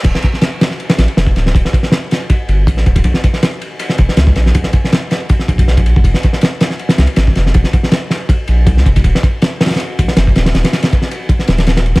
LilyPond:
<<
  \new Staff \with { instrumentName = "Sub bass" } { \clef bass \time 4/4 \key f \lydian \tempo 4 = 160 d,,16 r2 r16 a,,16 r16 f,,8 d,,8 | d,,16 r2 r16 g,,8 a,,8 d,,8 | bes,,16 r2 r16 f,,16 r16 des,8 bes,,8 | bes,,16 r2 r16 bes,,4~ bes,,16 aes,,16 |
f,,16 r2 r16 c,16 r16 aes,,8 f,,8 | f,,16 r2 r16 bes,,8 c,8 f,,8 | ees,,16 r2 r16 bes,,16 r16 ges,,8 ees,,8 | ees,,16 r2 r16 ees,,4~ ees,,16 des,16 | }
  \new DrumStaff \with { instrumentName = "Drums" } \drummode { \time 4/4 <cymc bd cymr>16 sn16 <bd cymr>16 sn16 <cymr sn>8 <cymr sn>16 sn16 cymr16 <cymr sn>16 <cymr sn>16 cymr16 <cymr sn>16 bd16 <cymr sn>16 sn16 | <bd cymr>16 sn16 <bd cymr>16 sn16 <cymr sn>8 <cymr sn>8 <bd cymr>8 cymr8 <bd cymr>16 sn16 <bd cymr>16 <bd cymr>16 | <bd cymr>16 sn16 <bd cymr>16 sn16 <cymr sn>8 cymr8 cymr16 sn16 <bd cymr>16 sn16 <cymr sn>16 bd16 <cymr sn>16 sn16 | <bd cymr>16 sn16 <bd cymr>16 sn16 <cymr sn>8 <cymr sn>8 <bd cymr>16 sn16 <bd cymr>16 <bd cymr>16 sn16 <bd cymr>16 cymr16 bd16 |
<bd cymr>16 sn16 <bd cymr>16 sn16 <cymr sn>8 <cymr sn>16 sn16 cymr16 <cymr sn>16 <cymr sn>16 cymr16 <cymr sn>16 bd16 <cymr sn>16 sn16 | <bd cymr>16 sn16 <bd cymr>16 sn16 <cymr sn>8 <cymr sn>8 <bd cymr>8 cymr8 <bd cymr>16 sn16 <bd cymr>16 <bd cymr>16 | <bd cymr>16 sn16 <bd cymr>8 <cymr sn>8 <cymr sn>32 <cymr sn>32 <cymr sn>32 <cymr sn>32 cymr8 <bd cymr>16 sn16 <cymr sn>16 bd16 <cymr sn>16 <cymr sn>16 | <cymr sn>16 <cymr sn>16 <cymr sn>16 <cymr sn>16 <bd cymr>16 sn16 cymr8 <bd cymr>16 sn16 <cymr sn>16 <cymr sn>16 <cymr sn>16 <cymr sn>16 cymr16 <cymr sn>16 | }
>>